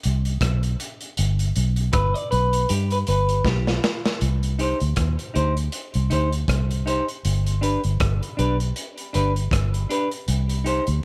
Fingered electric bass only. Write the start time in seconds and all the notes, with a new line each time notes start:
0.06 C2
0.42 B1
1.19 G1
1.57 B1
1.94 G1
2.33 B1
2.70 G2
3.08 G1
3.45 B1
4.22 C2
4.82 D2
4.98 D#2
5.36 D2
5.95 C2
6.12 D2
6.49 C2
7.25 G1
7.85 G1
8.01 G1
8.39 B1
9.15 G1
9.52 G1
10.28 C2
10.88 D2